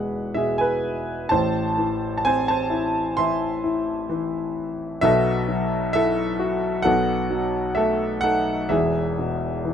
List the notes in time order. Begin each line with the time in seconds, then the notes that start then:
Already playing: E1 E2 B2 E3 G#3 G#4 B4 E5 F#5
0.34 B2 G#4 E5
0.58 B4 G#5
1.29 A1 A2 C5 A5
1.78 E3
2.17 A5
2.24 C4 C5 G#5
2.48 C5 A5
2.70 E4
3.17 E3 E5 C6
3.64 E4
4.09 E3
5.01 B1 B2 A4 E5
5.48 F#3
5.93 E4 A4 E5
6.40 F#4
6.82 B1 B2 A4 F#5
7.31 F#3
7.75 A3 A4 E5
8.21 D#4 A4 F#5
8.69 E1 E2 G#4 E5
9.19 B2
9.65 E3